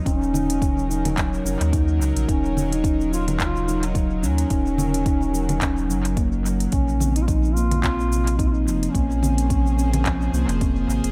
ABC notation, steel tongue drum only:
X:1
M:4/4
L:1/16
Q:"Swing 16ths" 1/4=108
K:Ebdor
V:1 name="Steel tongue drum"
D z E z D,2 E z G,2 D z E z D,2 | E z G,2 D z E z D,2 E z G,2 D z | E z D,2 E z G,2 D z G,2 B,2 G,2 | C,2 C z F,2 B, z C z C,2 C z F,2 |
B, z C z C,2 C z F,2 B, z C z C,2 |]